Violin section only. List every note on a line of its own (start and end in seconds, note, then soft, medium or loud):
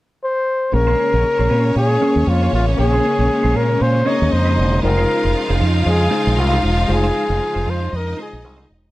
0.73 4.03 C#4 medium
0.73 4.03 C#5 medium
4.07 4.82 D#4 medium
4.07 4.82 D#5 medium
4.83 7.89 F4 medium
4.83 7.89 F5 medium
7.92 8.91 D#4 medium
7.92 8.91 D#5 medium